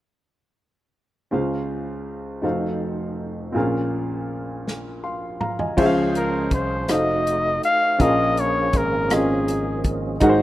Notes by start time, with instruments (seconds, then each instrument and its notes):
1.31 grand piano C#2 C#3 C#4 F4 G#4 C5 F5
2.42 grand piano F1 F2 D#4 F#4 A4 C5 F5
3.52 grand piano A#1 A#2 C4 F4 G#4 A#4
3.58 grand piano C#4 F5
4.68 snare
5.04 grand piano F5 C6
5.41 grand piano F5 A#5, mid tom
5.59 grand piano D#5 G#5, floor tom
5.77 slap bass C#2, grand piano F3 C#4 F4 G#4 C5 E5, tonewheel organ C#4 G#4 C5, kick, crash
5.86 grand piano F5
6.15 trumpet A#4, closed hi-hat
6.51 slap bass C2, trumpet C5, kick, closed hi-hat
6.87 slap bass F1, tonewheel organ A3 D#4 F#4, grand piano D#4 F#4 A4 C5 F5, trumpet D#5, cross-stick, closed hi-hat
7.27 closed hi-hat
7.63 trumpet F5, closed hi-hat
7.98 slap bass A#1, grand piano A#2 C#4 F4 G#4 A#4 F5, tonewheel organ F3 A#3 C#4 G#4, trumpet D#5, kick, closed hi-hat
8.37 trumpet C#5, closed hi-hat
8.73 slap bass G#1, trumpet A#4, kick, cross-stick, closed hi-hat
9.10 grand piano C4 F4 G#4 A#4 D#5, cross-stick, closed hi-hat
9.14 grand piano C#4, trumpet G#4
9.48 closed hi-hat
9.84 kick, closed hi-hat
10.20 slap bass G#1, grand piano G#2 D#4 F#4 G#4 A#4 F#5, tonewheel organ F#3 C4 D#4, kick, closed hi-hat
10.29 grand piano C5